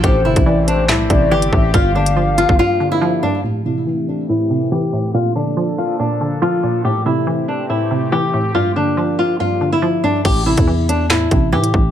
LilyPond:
<<
  \new Staff \with { instrumentName = "Soft synth lead" } { \time 4/4 \key a \phrygian \tempo 4 = 141 c''4 d''8 c''8 e''8 d''4 e''8 | f''1 | r1 | r1 |
r1 | r1 | r1 | }
  \new Staff \with { instrumentName = "Nylon-string guitar" } { \time 4/4 \key a \phrygian g'8 e'4 d'8 e'4 g'4 | f'8 d'4 f'8 f'8. e'8. d'8 | g'8 e'4 d'8 e'4 g'4 | f'8 d'4 f'8 d'4 f'4 |
g'8 e'4 d'8 e'4 g'4 | f'8 d'4 f'8 f'8. e'8. d'8 | g'8 e'4 d'8 e'4 g'4 | }
  \new Staff \with { instrumentName = "Analog synth pad" } { \time 4/4 \key a \phrygian << { g'1~ | g'1 | g'1 | a'1 |
g'1~ | g'1 | r1 | } \\ { <e a c'>1 | <f bes d'>1 | <e a c'>1 | <f bes d'>1 |
<e a c'>1 | <f bes d'>1 | r1 | } >> }
  \new Staff \with { instrumentName = "Synth pluck" } { \clef bass \time 4/4 \key a \phrygian a,8 c8 e4 a,8 c8 e8 a,8 | g,8 d8 f4 g,8 d8 f8 g,8 | a,8 c8 e4 a,8 c8 e8 a,8 | bes,8 d8 f4 bes,8 d8 f8 bes,8 |
a,8 c8 e4 a,8 c8 e8 a,8 | g,8 d8 f4 g,8 d8 f8 g,8 | a,8 c8 e4 a,8 c8 e8 a,8 | }
  \new Staff \with { instrumentName = "808-style bass" } { \clef bass \time 4/4 \key a \phrygian a,,8 g,,16 a,,4~ a,,16 c,16 a,,16 a,,8 g,,8 a,,8 | g,,4.~ g,,16 g,,16 r2 | r1 | r1 |
r1 | r1 | a,,8. e,4.~ e,16 a,,8 a,8 a,,8 | }
  \new DrumStaff \with { instrumentName = "Drums" } \drummode { \time 4/4 <hh bd>8. <hh bd>16 r8 hh8 <hc hh sn>8 <hh bd>8 r16 hh16 bd8 | <hh bd>8. hh16 r8 hh16 bd16 r4 r4 | r4 r4 r4 r4 | r4 r4 r4 r4 |
r4 r4 r4 r4 | r4 r4 r4 r4 | <cymc hh bd>8. <hh bd>16 r8 hh8 <hc hh sn>8 <hh bd>8 r16 hh16 bd8 | }
>>